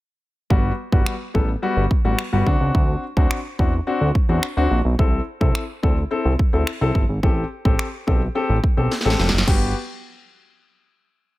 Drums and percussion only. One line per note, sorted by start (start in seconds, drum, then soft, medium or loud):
0.50 kick loud
0.92 kick loud
1.06 finger snap loud
1.35 kick medium
1.91 kick loud
2.19 finger snap loud
2.47 kick medium
2.75 kick loud
3.17 kick loud
3.31 finger snap loud
3.59 kick medium
4.15 kick loud
4.43 finger snap loud
4.99 kick loud
5.41 kick loud
5.55 finger snap loud
5.83 kick medium
6.39 kick loud
6.67 finger snap loud
6.95 kick medium
7.23 kick loud
7.65 kick loud
7.79 finger snap loud
8.08 kick medium
8.64 kick loud
8.91 snare medium
9.01 snare medium
9.10 snare medium
9.19 snare medium
9.29 snare medium
9.38 snare medium
9.48 kick loud
9.48 crash medium